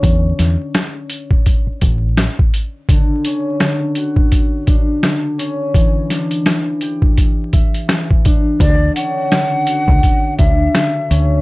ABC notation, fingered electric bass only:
X:1
M:4/4
L:1/16
Q:"Swing 16ths" 1/4=84
K:D
V:1 name="Fingered electric bass" clef=bass
E,,2 E,, z6 z A,,,3 z3 | z16 | z16 | D,,2 z4 z C,, z2 D,,2 z2 D,,2 |]